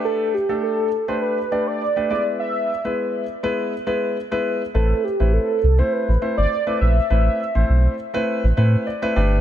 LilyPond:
<<
  \new Staff \with { instrumentName = "Soft synth lead" } { \time 4/4 \key a \minor \tempo 4 = 102 a'8 g'8 a'8. c''16 b'8. d''8. d''8 | e''4 r2. | a'8 g'8 a'8. c''16 b'8. d''8. e''8 | e''4 r2. | }
  \new Staff \with { instrumentName = "Grand piano" } { \time 4/4 \key a \minor << { r1 | r1 | r1 | r2. d''4 | } \\ { <a d' g' b'>8 r16 <a d' g' a'>8. r16 <a d' g' b'>8 r16 <a d' g' d''>8 r16 <a d' g' b'>16 <gis b e' b'>8~ | <gis b e' b'>8 r16 <gis b e' b'>8. r16 <gis b e' b'>8 r16 <gis b e' b'>8 r16 <gis b e' b'>8 r16 | <a c' e' b'>8 r16 <a c' e' b'>8. r16 <a c' e' c''>8 r16 <a c' e' c''>8 r16 <a c' e' b'>8 r16 | <a c' e' b'>8 r16 <a c' e' c''>8. r16 <a c' e' b'>8 r16 <a c' e' b'>8 r16 <a c' e' b'>16 <a d' g' b'>8 | } >> }
  \new Staff \with { instrumentName = "Sub bass" } { \clef bass \time 4/4 \key a \minor r1 | r1 | a,,8 r16 a,,8 r16 c,8 r16 a,,16 r16 g,,16 r8 bes,,8 | a,,8 r16 a,,16 b,,8 r8. a,,16 a,8 r8 g,,8 | }
>>